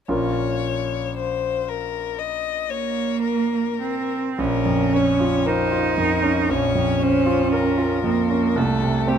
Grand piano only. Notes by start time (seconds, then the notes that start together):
0.08 A#1 C#4 F4 A#4
4.38 A#1
4.66 F2
4.93 C#4
5.20 F4
5.46 A#4
5.72 F4
5.98 F2
6.23 C#4
6.49 A#1
6.75 F2
7.00 C#4
7.26 F4
7.52 A#4
7.78 F4
8.04 F2
8.30 C#4
8.56 C2
8.82 C3
9.08 C4